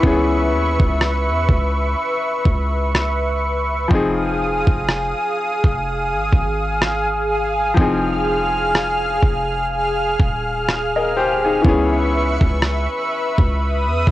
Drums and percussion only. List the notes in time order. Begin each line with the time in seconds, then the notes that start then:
0.03 kick
0.80 kick
1.01 cross-stick
1.49 kick
2.46 kick
2.95 cross-stick
3.91 kick
4.67 kick
4.88 cross-stick
5.64 kick
6.33 kick
6.82 cross-stick
7.78 kick
8.75 cross-stick
9.23 kick
10.20 kick
10.69 cross-stick
11.65 kick
12.41 kick
12.62 cross-stick
13.38 kick
14.07 kick